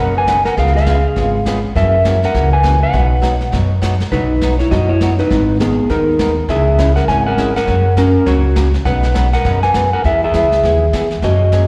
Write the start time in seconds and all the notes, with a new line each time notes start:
Already playing: B2 C#3 F#3 B3 A#4 F#5
0.00 F#1 D#4 B4
0.17 B4 G#5
0.27 B2 C#3 F#3 B3 D#4 B4, kick, snare, hi-hat pedal
0.45 A#4 F#5, snare
0.57 C#2 C#3 G#3 B3 F4 G#4 F5, brush sweep, kick, snare
0.67 snare
0.75 G#4 F5, snare
0.86 C#3 G#3 B3 F4 G#4, kick, snare, hi-hat pedal
1.16 G#1 C#3 G#3 B3 F4 G#4, brush sweep, kick, snare
1.46 C#3 G#3 B3 F4 G#4, kick, snare, hi-hat pedal
1.75 F#2 C#3 E3 A#3 C#4 F#4 A#4 E5, brush sweep, kick, snare
2.05 C#3 E3 A#3 C#4 F#4, kick, snare, hi-hat pedal
2.23 A#4 F#5, snare
2.34 C#2 C#3 E3 A#3 C#4 F#4, brush sweep, kick, snare
2.53 B4 G#5
2.63 C#3 E3 A#3 C#4 F#4, kick, snare, hi-hat pedal
2.83 B4 F#5
2.93 B1 B2 F#3 B3 D#4 F#4, brush sweep, kick, snare
3.22 B2 F#3 B3 D#4 F#4, kick, snare, hi-hat pedal
3.41 snare
3.52 F#2 B2 F#3 B3 D#4 F#4, brush sweep, kick, snare
3.82 B2 F#3 B3 D#4 F#4, kick, snare, hi-hat pedal
4.00 snare
4.12 B1 B2 F#3 B3 D#4 F#4 B4, brush sweep, kick, snare
4.42 B2 F#3 B3 D#4 F#4, kick, snare, hi-hat pedal
4.59 E4 C#5, snare
4.71 F#2 B2 F#3 B3 D#4 F#4 D#5, brush sweep, kick, snare
4.89 E4 C#5
5.01 B2 F#3 B3 D#4 F#4, kick, snare, hi-hat pedal
5.19 D#4 B4, snare
5.30 G#1 D#3 G#3 B3 D#4 A#4, brush sweep, kick, snare
5.60 D#3 G#3 B3 D#4 G#4 A#4, kick, snare, hi-hat pedal
5.89 D#2 D#3 G#3 B3 D#4 A#4, brush sweep, kick, snare
6.19 D#3 G#3 B3 D#4 A#4, kick, snare, hi-hat pedal
6.48 C#2 C#3 G#3 C#4 E4 G#4 E5, brush sweep, kick, snare
6.78 C#3 G#3 C#4 E4 G#4, kick, snare, hi-hat pedal
6.96 A#4 F#5, snare
7.08 G#1 C#3 G#3 C#4 E4 G#4 C#5 G#5, brush sweep, kick, snare
7.27 A#4 F#5
7.38 C#3 G#3 C#4 E4 G#4, kick, snare, hi-hat pedal
7.56 A#4 F#5, snare
7.67 F#2 C#3 F#3 A#3 C#4 F#4, brush sweep, kick, snare
7.97 C#3 F#3 A#3 C#4 F#4 A#4, kick, snare, hi-hat pedal
8.26 C#2 C#3 F#3 A#3 C#4 F#4 C#5, brush sweep, kick, snare
8.56 C#3 F#3 A#3 C#4 F#4, kick, snare, hi-hat pedal
8.74 snare
8.85 B1 B2 C#3 F#3 B3 D#4 B4 F#5, brush sweep, kick, snare
9.03 snare
9.14 B2 C#3 F#3 B3 D#4 B4, kick, snare, hi-hat pedal
9.33 A#4 F#5, snare
9.44 F#2 B2 C#3 F#3 B3 D#4 B4, brush sweep, kick, snare
9.63 B4 G#5, snare
9.74 B2 C#3 F#3 B3 D#4 B4, kick, snare, hi-hat pedal
9.93 A#4 F#5
10.04 E2 E3 B3 E4 G#4 E5, brush sweep, kick, snare
10.24 G#4 E5
10.34 C#2 E3 B3 E4 G#4, kick, snare, hi-hat pedal
10.52 snare
10.63 D#2 E3 B3 E4 G#4, brush sweep, kick, snare
10.93 E2 E3 B3 E4 G#4, kick, snare, hi-hat pedal
11.11 snare
11.22 F#2 F#3 A#3 C#4 F#4 G#4 D#5, brush sweep, kick, snare
11.52 F#3 A#3 C#4 G#4, kick, snare, hi-hat pedal